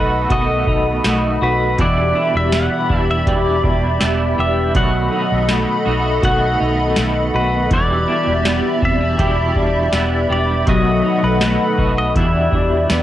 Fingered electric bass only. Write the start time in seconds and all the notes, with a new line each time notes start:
Already playing: B1
0.30 B1
0.67 B1
1.05 B1
1.42 B1
1.79 E1
2.35 E1
2.90 E1
3.27 E1
3.64 E1
4.02 E1
4.39 E1
4.75 B1
5.32 B1
5.87 B1
6.23 B1
6.61 B1
6.98 B1
7.34 B1
7.71 E1
8.27 E1
8.82 E1
9.19 E1
9.56 E1
9.93 E1
10.30 E1
10.67 B1
11.23 B1
11.78 B1
12.16 E2
12.52 E2
12.90 E2